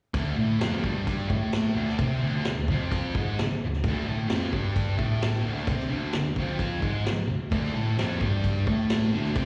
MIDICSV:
0, 0, Header, 1, 4, 480
1, 0, Start_track
1, 0, Tempo, 460829
1, 146, Time_signature, 4, 2, 24, 8
1, 9846, End_track
2, 0, Start_track
2, 0, Title_t, "Distorted electric guitar"
2, 0, Program_c, 0, 30
2, 145, Note_on_c, 0, 38, 95
2, 166, Note_on_c, 0, 50, 103
2, 379, Note_off_c, 0, 38, 0
2, 389, Note_off_c, 0, 50, 0
2, 393, Note_on_c, 0, 45, 84
2, 393, Note_on_c, 0, 57, 90
2, 617, Note_off_c, 0, 45, 0
2, 622, Note_on_c, 0, 41, 87
2, 623, Note_off_c, 0, 57, 0
2, 633, Note_on_c, 0, 53, 112
2, 857, Note_off_c, 0, 41, 0
2, 863, Note_off_c, 0, 53, 0
2, 875, Note_on_c, 0, 43, 99
2, 881, Note_on_c, 0, 55, 100
2, 1353, Note_off_c, 0, 43, 0
2, 1353, Note_on_c, 0, 45, 92
2, 1368, Note_off_c, 0, 55, 0
2, 1368, Note_on_c, 0, 57, 99
2, 1817, Note_off_c, 0, 45, 0
2, 1821, Note_on_c, 0, 38, 98
2, 1832, Note_off_c, 0, 57, 0
2, 1836, Note_on_c, 0, 50, 101
2, 2058, Note_off_c, 0, 38, 0
2, 2066, Note_off_c, 0, 50, 0
2, 2075, Note_on_c, 0, 48, 96
2, 2085, Note_on_c, 0, 60, 93
2, 2305, Note_off_c, 0, 48, 0
2, 2310, Note_off_c, 0, 60, 0
2, 2314, Note_on_c, 0, 38, 93
2, 2326, Note_on_c, 0, 50, 93
2, 2545, Note_off_c, 0, 38, 0
2, 2551, Note_off_c, 0, 50, 0
2, 2573, Note_on_c, 0, 38, 81
2, 2754, Note_off_c, 0, 38, 0
2, 2809, Note_on_c, 0, 41, 90
2, 2819, Note_on_c, 0, 53, 104
2, 3273, Note_off_c, 0, 41, 0
2, 3278, Note_off_c, 0, 53, 0
2, 3294, Note_on_c, 0, 44, 98
2, 3307, Note_on_c, 0, 56, 92
2, 3516, Note_off_c, 0, 44, 0
2, 3522, Note_off_c, 0, 56, 0
2, 3803, Note_on_c, 0, 38, 76
2, 3969, Note_off_c, 0, 38, 0
2, 4032, Note_on_c, 0, 38, 96
2, 4047, Note_on_c, 0, 50, 118
2, 4244, Note_off_c, 0, 38, 0
2, 4250, Note_on_c, 0, 45, 101
2, 4252, Note_off_c, 0, 50, 0
2, 4263, Note_on_c, 0, 57, 103
2, 4462, Note_off_c, 0, 45, 0
2, 4467, Note_on_c, 0, 41, 91
2, 4476, Note_off_c, 0, 57, 0
2, 4480, Note_on_c, 0, 53, 106
2, 4722, Note_off_c, 0, 41, 0
2, 4722, Note_on_c, 0, 43, 84
2, 4734, Note_off_c, 0, 53, 0
2, 4734, Note_on_c, 0, 55, 110
2, 5183, Note_off_c, 0, 43, 0
2, 5186, Note_off_c, 0, 55, 0
2, 5187, Note_on_c, 0, 45, 90
2, 5190, Note_on_c, 0, 57, 102
2, 5662, Note_off_c, 0, 45, 0
2, 5663, Note_off_c, 0, 57, 0
2, 5673, Note_on_c, 0, 38, 92
2, 5687, Note_on_c, 0, 50, 99
2, 5905, Note_off_c, 0, 38, 0
2, 5912, Note_off_c, 0, 50, 0
2, 5920, Note_on_c, 0, 48, 104
2, 5933, Note_on_c, 0, 60, 107
2, 6135, Note_off_c, 0, 48, 0
2, 6140, Note_on_c, 0, 38, 88
2, 6154, Note_off_c, 0, 60, 0
2, 6158, Note_on_c, 0, 50, 92
2, 6378, Note_off_c, 0, 38, 0
2, 6387, Note_off_c, 0, 50, 0
2, 6416, Note_on_c, 0, 38, 72
2, 6595, Note_off_c, 0, 38, 0
2, 6645, Note_on_c, 0, 41, 84
2, 6662, Note_on_c, 0, 53, 101
2, 7088, Note_off_c, 0, 41, 0
2, 7092, Note_on_c, 0, 44, 95
2, 7100, Note_off_c, 0, 53, 0
2, 7104, Note_on_c, 0, 56, 116
2, 7334, Note_off_c, 0, 44, 0
2, 7340, Note_off_c, 0, 56, 0
2, 7585, Note_on_c, 0, 38, 72
2, 7779, Note_off_c, 0, 38, 0
2, 7823, Note_on_c, 0, 38, 97
2, 7831, Note_on_c, 0, 50, 107
2, 8058, Note_off_c, 0, 38, 0
2, 8063, Note_off_c, 0, 50, 0
2, 8069, Note_on_c, 0, 45, 90
2, 8084, Note_on_c, 0, 57, 95
2, 8301, Note_off_c, 0, 45, 0
2, 8309, Note_off_c, 0, 57, 0
2, 8310, Note_on_c, 0, 41, 95
2, 8317, Note_on_c, 0, 53, 108
2, 8541, Note_off_c, 0, 41, 0
2, 8545, Note_off_c, 0, 53, 0
2, 8550, Note_on_c, 0, 43, 97
2, 8563, Note_on_c, 0, 55, 109
2, 9032, Note_off_c, 0, 43, 0
2, 9032, Note_on_c, 0, 45, 92
2, 9044, Note_off_c, 0, 55, 0
2, 9044, Note_on_c, 0, 57, 98
2, 9501, Note_off_c, 0, 45, 0
2, 9507, Note_off_c, 0, 57, 0
2, 9519, Note_on_c, 0, 38, 100
2, 9532, Note_on_c, 0, 50, 98
2, 9744, Note_off_c, 0, 38, 0
2, 9750, Note_off_c, 0, 50, 0
2, 9757, Note_on_c, 0, 60, 96
2, 9762, Note_on_c, 0, 48, 96
2, 9846, Note_off_c, 0, 48, 0
2, 9846, Note_off_c, 0, 60, 0
2, 9846, End_track
3, 0, Start_track
3, 0, Title_t, "Muted distorted electric guitar strokes"
3, 3552, Note_on_c, 9, 29, 63
3, 3657, Note_off_c, 9, 29, 0
3, 7358, Note_on_c, 9, 29, 64
3, 7462, Note_off_c, 9, 29, 0
3, 9846, End_track
4, 0, Start_track
4, 0, Title_t, "Drums"
4, 145, Note_on_c, 9, 49, 65
4, 146, Note_on_c, 9, 36, 111
4, 249, Note_off_c, 9, 49, 0
4, 250, Note_off_c, 9, 36, 0
4, 634, Note_on_c, 9, 49, 65
4, 637, Note_on_c, 9, 38, 118
4, 738, Note_off_c, 9, 49, 0
4, 742, Note_off_c, 9, 38, 0
4, 872, Note_on_c, 9, 36, 78
4, 977, Note_off_c, 9, 36, 0
4, 1115, Note_on_c, 9, 36, 82
4, 1117, Note_on_c, 9, 49, 60
4, 1219, Note_off_c, 9, 36, 0
4, 1221, Note_off_c, 9, 49, 0
4, 1354, Note_on_c, 9, 36, 93
4, 1458, Note_off_c, 9, 36, 0
4, 1590, Note_on_c, 9, 49, 66
4, 1594, Note_on_c, 9, 38, 108
4, 1695, Note_off_c, 9, 49, 0
4, 1698, Note_off_c, 9, 38, 0
4, 1964, Note_on_c, 9, 38, 39
4, 2068, Note_off_c, 9, 38, 0
4, 2071, Note_on_c, 9, 36, 104
4, 2073, Note_on_c, 9, 49, 60
4, 2175, Note_off_c, 9, 36, 0
4, 2177, Note_off_c, 9, 49, 0
4, 2550, Note_on_c, 9, 49, 65
4, 2553, Note_on_c, 9, 38, 109
4, 2654, Note_off_c, 9, 49, 0
4, 2657, Note_off_c, 9, 38, 0
4, 2793, Note_on_c, 9, 36, 75
4, 2897, Note_off_c, 9, 36, 0
4, 3036, Note_on_c, 9, 36, 84
4, 3042, Note_on_c, 9, 49, 60
4, 3141, Note_off_c, 9, 36, 0
4, 3146, Note_off_c, 9, 49, 0
4, 3279, Note_on_c, 9, 36, 92
4, 3384, Note_off_c, 9, 36, 0
4, 3528, Note_on_c, 9, 49, 55
4, 3532, Note_on_c, 9, 38, 121
4, 3633, Note_off_c, 9, 49, 0
4, 3636, Note_off_c, 9, 38, 0
4, 3886, Note_on_c, 9, 38, 38
4, 3990, Note_off_c, 9, 38, 0
4, 3996, Note_on_c, 9, 49, 59
4, 3997, Note_on_c, 9, 36, 111
4, 4100, Note_off_c, 9, 49, 0
4, 4101, Note_off_c, 9, 36, 0
4, 4473, Note_on_c, 9, 49, 61
4, 4476, Note_on_c, 9, 38, 108
4, 4578, Note_off_c, 9, 49, 0
4, 4581, Note_off_c, 9, 38, 0
4, 4716, Note_on_c, 9, 36, 82
4, 4821, Note_off_c, 9, 36, 0
4, 4956, Note_on_c, 9, 36, 86
4, 4960, Note_on_c, 9, 49, 63
4, 5060, Note_off_c, 9, 36, 0
4, 5064, Note_off_c, 9, 49, 0
4, 5195, Note_on_c, 9, 36, 87
4, 5299, Note_off_c, 9, 36, 0
4, 5439, Note_on_c, 9, 49, 64
4, 5442, Note_on_c, 9, 38, 123
4, 5543, Note_off_c, 9, 49, 0
4, 5546, Note_off_c, 9, 38, 0
4, 5799, Note_on_c, 9, 38, 38
4, 5903, Note_off_c, 9, 38, 0
4, 5907, Note_on_c, 9, 49, 61
4, 5908, Note_on_c, 9, 36, 117
4, 6011, Note_off_c, 9, 49, 0
4, 6012, Note_off_c, 9, 36, 0
4, 6039, Note_on_c, 9, 38, 37
4, 6143, Note_off_c, 9, 38, 0
4, 6384, Note_on_c, 9, 49, 61
4, 6387, Note_on_c, 9, 38, 112
4, 6488, Note_off_c, 9, 49, 0
4, 6491, Note_off_c, 9, 38, 0
4, 6627, Note_on_c, 9, 36, 77
4, 6731, Note_off_c, 9, 36, 0
4, 6866, Note_on_c, 9, 36, 82
4, 6873, Note_on_c, 9, 49, 57
4, 6970, Note_off_c, 9, 36, 0
4, 6977, Note_off_c, 9, 49, 0
4, 7107, Note_on_c, 9, 36, 82
4, 7212, Note_off_c, 9, 36, 0
4, 7356, Note_on_c, 9, 49, 58
4, 7359, Note_on_c, 9, 38, 114
4, 7460, Note_off_c, 9, 49, 0
4, 7463, Note_off_c, 9, 38, 0
4, 7830, Note_on_c, 9, 49, 59
4, 7831, Note_on_c, 9, 36, 118
4, 7934, Note_off_c, 9, 49, 0
4, 7935, Note_off_c, 9, 36, 0
4, 7959, Note_on_c, 9, 38, 35
4, 8063, Note_off_c, 9, 38, 0
4, 8319, Note_on_c, 9, 49, 62
4, 8322, Note_on_c, 9, 38, 104
4, 8423, Note_off_c, 9, 49, 0
4, 8426, Note_off_c, 9, 38, 0
4, 8551, Note_on_c, 9, 36, 87
4, 8655, Note_off_c, 9, 36, 0
4, 8791, Note_on_c, 9, 36, 80
4, 8796, Note_on_c, 9, 49, 58
4, 8895, Note_off_c, 9, 36, 0
4, 8900, Note_off_c, 9, 49, 0
4, 9031, Note_on_c, 9, 36, 90
4, 9135, Note_off_c, 9, 36, 0
4, 9268, Note_on_c, 9, 49, 68
4, 9271, Note_on_c, 9, 38, 118
4, 9372, Note_off_c, 9, 49, 0
4, 9375, Note_off_c, 9, 38, 0
4, 9627, Note_on_c, 9, 38, 37
4, 9731, Note_off_c, 9, 38, 0
4, 9741, Note_on_c, 9, 49, 67
4, 9747, Note_on_c, 9, 36, 104
4, 9845, Note_off_c, 9, 49, 0
4, 9846, Note_off_c, 9, 36, 0
4, 9846, End_track
0, 0, End_of_file